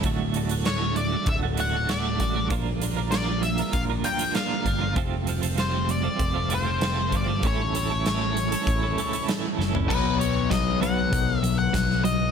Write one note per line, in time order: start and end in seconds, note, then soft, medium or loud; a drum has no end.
0.03 1.14 D1 medium
0.03 0.64 D2 medium
0.03 0.34 A2 medium
0.03 0.35 D3 medium
0.03 0.35 A3 medium
0.03 0.36 F#4 medium
0.03 kick medium
0.03 closed hi-hat medium
0.34 0.64 A2 medium
0.34 0.51 D3 medium
0.34 0.50 A3 medium
0.34 0.49 F#4 medium
0.34 closed hi-hat medium
0.49 0.65 D3 medium
0.49 0.65 A3 medium
0.49 0.66 F#4 medium
0.49 closed hi-hat medium
0.65 1.12 D2 medium
0.65 1.12 A2 medium
0.65 0.82 D3 medium
0.65 0.81 A3 medium
0.65 0.80 F#4 medium
0.65 0.95 C#5 medium
0.65 snare loud
0.65 closed hi-hat medium
0.81 1.13 D3 soft
0.81 1.12 A3 medium
0.81 1.11 F#4 medium
0.96 1.29 D5 medium
0.96 closed hi-hat medium
1.12 1.44 D3 soft
1.12 1.42 A3 medium
1.12 1.41 F#4 medium
1.26 2.20 D1 medium
1.26 1.37 E5 medium
1.26 kick loud
1.26 closed hi-hat medium
1.43 1.57 D3 medium
1.43 1.58 A3 medium
1.43 1.58 F#4 medium
1.57 1.87 A2 medium
1.57 1.74 D3 medium
1.57 1.73 A3 medium
1.57 1.72 F#4 medium
1.57 1.88 F#5 medium
1.57 closed hi-hat medium
1.73 1.88 D3 medium
1.73 1.88 A3 medium
1.73 1.89 F#4 medium
1.88 2.49 D2 medium
1.88 2.19 A2 medium
1.88 2.20 D3 medium
1.88 2.20 A3 medium
1.88 2.21 F#4 medium
1.88 2.47 D5 medium
1.88 snare loud
1.88 closed hi-hat medium
2.20 2.47 A1 medium
2.20 2.49 A2 medium
2.20 2.37 D3 medium
2.20 2.36 A3 medium
2.20 2.34 F#4 medium
2.20 kick medium
2.20 closed hi-hat medium
2.36 2.50 D3 medium
2.36 2.50 A3 medium
2.36 2.49 F#4 medium
2.50 3.61 A#1 medium
2.50 3.10 A#2 medium
2.50 3.12 F3 medium
2.50 2.81 A#3 medium
2.50 2.81 D4 medium
2.50 2.83 F4 medium
2.50 2.82 A#4 medium
2.50 kick loud
2.50 closed hi-hat medium
2.82 2.97 A#3 medium
2.82 2.97 D4 medium
2.82 2.97 F4 medium
2.82 2.95 A#4 medium
2.82 closed hi-hat medium
2.97 3.12 A#3 medium
2.97 3.12 D4 medium
2.97 3.13 F4 medium
2.97 3.13 A#4 medium
3.11 3.58 A#2 medium
3.11 4.34 F3 medium
3.11 3.29 A#3 medium
3.11 3.28 D4 medium
3.11 3.28 F4 medium
3.11 3.27 A#4 medium
3.11 3.43 D5 medium
3.11 snare loud
3.11 closed hi-hat medium
3.28 3.60 A#3 medium
3.28 3.59 D4 medium
3.28 3.58 F4 medium
3.28 3.58 A#4 medium
3.43 3.75 E5 medium
3.43 closed hi-hat medium
3.58 3.90 A#3 medium
3.58 3.89 D4 medium
3.58 3.89 F4 medium
3.58 3.88 A#4 medium
3.58 closed hi-hat medium
3.73 4.01 A#1 medium
3.73 3.82 F5 medium
3.73 kick loud
3.73 closed hi-hat medium
3.90 4.03 A#3 soft
3.90 4.04 D4 medium
3.90 4.04 F4 medium
3.90 4.05 A#4 medium
4.04 4.21 A#3 medium
4.04 4.20 D4 medium
4.04 4.20 F4 medium
4.04 4.18 A#4 medium
4.04 4.33 G5 medium
4.04 closed hi-hat medium
4.19 4.34 A#3 medium
4.19 4.35 D4 medium
4.19 4.35 F4 medium
4.19 4.35 A#4 medium
4.19 closed hi-hat medium
4.35 4.95 A#2 medium
4.35 4.95 F3 medium
4.35 4.64 A#3 medium
4.35 4.65 D4 medium
4.35 4.66 F4 medium
4.35 4.67 A#4 loud
4.35 4.93 F5 medium
4.35 snare loud
4.35 closed hi-hat medium
4.66 4.94 G1 medium
4.66 4.81 A#3 medium
4.66 4.81 D4 medium
4.66 4.80 F4 medium
4.66 4.79 A#4 medium
4.66 kick medium
4.66 closed hi-hat medium
4.80 4.96 A#3 medium
4.80 4.96 D4 medium
4.80 4.95 F4 medium
4.80 4.95 A#4 medium
4.96 6.07 F1 loud
4.96 5.55 F2 medium
4.96 5.56 C3 medium
4.96 5.25 F3 medium
4.96 5.27 A3 medium
4.96 5.27 C4 medium
4.96 5.28 F4 medium
4.96 kick loud
4.96 closed hi-hat medium
5.26 5.43 F3 medium
5.26 5.43 A3 medium
5.26 5.42 C4 medium
5.26 5.41 F4 medium
5.26 closed hi-hat medium
5.42 5.56 F3 medium
5.42 5.58 A3 medium
5.42 5.57 C4 medium
5.42 5.58 F4 medium
5.42 closed hi-hat medium
5.57 6.04 F2 medium
5.57 6.04 C3 medium
5.57 5.72 F3 medium
5.57 5.73 A3 medium
5.57 5.71 C4 medium
5.57 5.70 F4 medium
5.57 5.88 C5 medium
5.57 snare loud
5.57 closed hi-hat medium
5.71 6.04 F3 medium
5.71 6.03 A3 medium
5.71 6.02 C4 medium
5.71 6.02 F4 medium
5.89 6.54 D5 loud
5.89 closed hi-hat medium
6.03 6.34 F3 soft
6.03 6.34 A3 medium
6.03 6.33 C4 medium
6.03 6.33 F4 medium
6.19 7.12 F1 medium
6.19 kick loud
6.19 closed hi-hat medium
6.34 6.49 F3 soft
6.34 6.50 A3 medium
6.34 6.50 C4 soft
6.34 6.51 F4 medium
6.50 6.67 F3 medium
6.50 6.66 A3 medium
6.50 6.66 C4 medium
6.50 6.65 F4 medium
6.50 closed hi-hat medium
6.54 7.16 C5 medium
6.66 6.82 F3 medium
6.66 6.82 A3 medium
6.66 6.83 C4 medium
6.66 6.83 F4 medium
6.81 7.42 F2 medium
6.81 7.42 C3 medium
6.81 7.12 F3 medium
6.81 7.12 A3 medium
6.81 7.13 C4 medium
6.81 7.13 F4 medium
6.81 snare loud
6.81 closed hi-hat medium
7.12 7.40 G1 medium
7.12 7.29 F3 medium
7.12 7.28 A3 medium
7.12 7.28 C4 medium
7.12 7.27 F4 medium
7.12 kick medium
7.12 closed hi-hat medium
7.17 7.43 D5 medium
7.28 7.43 F3 medium
7.28 7.42 A3 medium
7.28 7.42 C4 medium
7.28 7.42 F4 medium
7.43 8.54 A1 medium
7.43 8.05 A2 medium
7.43 8.05 E3 medium
7.43 7.73 A3 medium
7.43 7.74 C#4 medium
7.43 7.75 E4 medium
7.43 7.75 A4 medium
7.43 kick loud
7.43 closed hi-hat medium
7.47 9.26 C#5 medium
7.74 7.91 A3 medium
7.74 7.91 C#4 medium
7.74 7.90 E4 medium
7.74 7.89 A4 medium
7.74 closed hi-hat medium
7.90 8.06 A3 medium
7.90 8.06 C#4 medium
7.90 8.06 E4 medium
7.90 8.07 A4 medium
8.06 8.52 A2 medium
8.06 8.52 E3 medium
8.06 8.22 A3 medium
8.06 8.21 C#4 medium
8.06 8.20 E4 loud
8.06 8.20 A4 medium
8.06 snare loud
8.06 closed hi-hat medium
8.21 8.53 A3 medium
8.21 8.52 E4 medium
8.21 8.51 A4 medium
8.37 closed hi-hat medium
8.52 8.83 A3 soft
8.52 8.83 C#4 medium
8.52 8.82 E4 medium
8.52 8.82 A4 medium
8.52 closed hi-hat medium
8.67 8.94 A1 medium
8.67 kick loud
8.67 closed hi-hat medium
8.83 8.96 A3 soft
8.83 8.98 C#4 soft
8.83 8.98 E4 medium
8.83 8.98 A4 medium
8.97 9.14 A3 medium
8.97 9.13 C#4 medium
8.97 9.12 E4 medium
8.97 9.12 A4 medium
8.97 closed hi-hat medium
9.13 9.28 C#4 medium
9.13 9.28 E4 medium
9.13 9.29 A4 medium
9.13 closed hi-hat medium
9.28 9.88 A2 medium
9.28 9.88 E3 medium
9.28 9.57 A3 medium
9.28 9.58 C#4 medium
9.28 9.59 E4 medium
9.28 9.60 A4 medium
9.28 snare loud
9.28 closed hi-hat medium
9.58 9.87 F#1 medium
9.58 9.75 A3 medium
9.58 9.75 C#4 medium
9.58 9.74 E4 medium
9.58 9.73 A4 medium
9.58 snare medium
9.74 9.89 A3 medium
9.74 9.89 C#4 medium
9.74 9.88 E4 medium
9.74 9.88 A4 medium
9.74 floor tom medium
9.89 10.45 B1 medium
9.89 10.18 B2 medium
9.89 10.19 F#3 medium
9.89 10.19 B3 medium
9.89 10.19 B4 medium
9.89 kick loud
9.89 crash medium
10.20 10.48 B2 medium
10.20 10.48 F#3 medium
10.20 10.52 C#5 medium
10.20 closed hi-hat medium
10.50 11.06 B1 medium
10.50 10.79 B2 medium
10.50 10.79 F#3 medium
10.50 10.81 D#5 medium
10.50 kick loud
10.50 snare loud
10.50 closed hi-hat medium
10.81 11.11 B2 medium
10.81 11.11 F#3 medium
10.81 11.11 B3 medium
10.81 11.39 F#5 loud
10.81 closed hi-hat medium
11.12 11.68 B1 medium
11.12 11.40 B2 medium
11.12 11.40 F#3 medium
11.12 kick loud
11.12 closed hi-hat medium
11.39 11.71 B2 medium
11.39 11.71 F#3 medium
11.39 11.58 E5 loud
11.44 closed hi-hat medium
11.59 12.04 F#5 loud
11.73 12.29 B1 medium
11.73 12.01 B2 medium
11.73 12.02 F#3 medium
11.73 kick loud
11.73 snare loud
11.73 closed hi-hat medium
11.91 snare soft
12.04 12.31 B2 medium
12.04 12.31 F#3 medium
12.04 12.31 D#5 medium
12.04 closed hi-hat medium